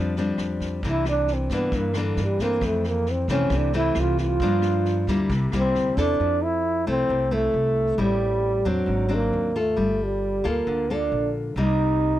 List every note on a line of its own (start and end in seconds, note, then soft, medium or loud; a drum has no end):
0.00 0.35 F2 medium
0.00 0.82 F3 medium
0.00 0.13 G3 medium
0.00 0.14 C4 medium
0.00 0.14 D4 medium
0.16 0.81 G3 medium
0.16 0.81 C4 medium
0.16 0.81 D4 medium
0.16 snare soft
0.38 0.80 F2 medium
0.38 cross-stick medium
0.38 snare soft
0.61 kick soft
0.61 snare soft
0.83 1.46 C2 medium
0.83 1.71 C3 medium
0.83 1.47 E3 medium
0.83 1.47 A#3 medium
0.83 1.48 D4 medium
0.83 kick medium
0.83 snare soft
0.89 1.07 E4 medium
1.05 1.34 D4 loud
1.05 cross-stick medium
1.05 snare soft
1.27 snare soft
1.33 1.53 C4 medium
1.49 1.71 G2 medium
1.49 1.92 E3 medium
1.49 1.92 A#3 medium
1.49 1.93 D4 medium
1.49 kick soft
1.49 snare soft
1.54 1.78 B3 medium
1.71 2.14 G2 medium
1.71 2.60 G2 medium
1.71 kick medium
1.71 snare soft
1.77 2.00 A#3 medium
1.94 2.37 E3 medium
1.94 2.37 A#3 medium
1.94 2.37 D4 medium
1.94 cross-stick medium
1.94 snare soft
1.98 2.24 D3 medium
2.16 2.59 G2 medium
2.16 snare soft
2.23 2.43 G3 medium
2.39 3.26 E3 medium
2.39 3.26 A3 medium
2.39 2.67 A#3 loud
2.39 3.26 C4 medium
2.39 kick soft
2.39 snare soft
2.61 3.25 F2 medium
2.61 3.49 F2 medium
2.61 kick medium
2.61 cross-stick medium
2.61 snare soft
2.66 2.89 A3 medium
2.84 3.12 A#3 medium
2.84 snare soft
3.06 snare soft
3.11 3.30 C4 medium
3.28 3.49 C2 medium
3.28 3.70 E3 medium
3.28 3.71 A3 medium
3.28 3.71 C4 medium
3.28 3.58 C#4 loud
3.28 kick soft
3.28 snare soft
3.50 3.92 C2 medium
3.50 4.39 C3 medium
3.50 kick medium
3.50 cross-stick medium
3.50 snare soft
3.56 3.75 D4 medium
3.72 4.37 E3 medium
3.72 4.37 A3 medium
3.72 4.38 C4 medium
3.72 4.01 E4 loud
3.72 snare soft
3.95 4.37 C2 medium
3.95 cross-stick medium
3.95 snare soft
4.00 4.19 F4 medium
4.17 5.27 F4 medium
4.17 kick soft
4.17 snare soft
4.40 5.03 G2 loud
4.40 5.28 G2 medium
4.40 5.04 F3 medium
4.40 5.04 A#3 medium
4.40 5.05 D4 medium
4.40 kick medium
4.40 snare soft
4.62 cross-stick medium
4.62 snare soft
4.85 snare soft
5.07 5.28 D2 medium
5.07 5.49 G3 medium
5.07 5.50 A#3 medium
5.07 5.50 E4 medium
5.07 kick soft
5.07 snare soft
5.30 5.51 C2 medium
5.30 6.17 C3 medium
5.30 kick medium
5.30 snare soft
5.52 5.72 C2 medium
5.52 5.94 G3 medium
5.52 5.94 A#3 medium
5.52 6.00 C4 loud
5.52 5.94 E4 medium
5.52 cross-stick medium
5.52 snare soft
5.75 5.95 D2 medium
5.75 snare soft
5.97 6.17 E2 medium
5.97 6.62 C4 medium
5.97 6.45 D4 loud
5.97 6.63 E4 medium
5.97 6.63 A4 medium
5.97 kick soft
5.97 snare soft
6.20 6.82 F2 medium
6.20 7.07 F3 medium
6.43 6.87 E4 medium
6.87 7.07 C2 medium
6.87 7.28 A3 medium
6.87 7.28 C4 medium
6.87 7.34 C4 loud
6.87 7.28 E4 medium
7.09 7.50 C2 medium
7.09 7.97 C3 medium
7.31 7.95 A3 medium
7.31 8.02 A3 medium
7.31 7.95 C4 medium
7.31 7.95 E4 medium
7.54 7.95 C2 medium
7.98 8.61 A1 medium
7.98 8.86 A2 soft
7.98 8.62 G3 medium
7.98 8.70 G3 medium
7.98 8.62 C4 soft
7.98 8.62 E4 medium
8.65 8.86 E2 medium
8.65 9.06 F#3 medium
8.65 9.15 F#3 medium
8.65 9.07 C4 medium
8.65 9.07 D4 medium
8.86 9.29 G#1 medium
8.86 9.74 G#2 soft
9.09 9.51 F#3 medium
9.09 9.51 C4 medium
9.09 9.51 D4 medium
9.14 9.60 A#3 medium
9.33 9.74 D#2 medium
9.56 10.05 A3 medium
9.56 10.41 F4 medium
9.56 10.42 A4 medium
9.76 10.40 G1 medium
9.76 10.64 G3 medium
10.03 10.49 G3 medium
10.44 10.65 D2 medium
10.44 10.85 A#3 medium
10.44 10.86 F4 medium
10.44 10.86 A4 medium
10.48 10.95 A#3 medium
10.67 11.09 D2 medium
10.67 11.54 D3 medium
10.90 11.53 A#3 medium
10.90 11.31 D4 medium
10.90 11.54 F4 medium
10.90 11.54 A4 medium
11.12 11.53 A#1 medium
11.56 12.19 C2 medium
11.56 12.20 C3 medium
11.56 12.20 G3 medium
11.56 12.20 A#3 medium
11.56 12.20 D#4 medium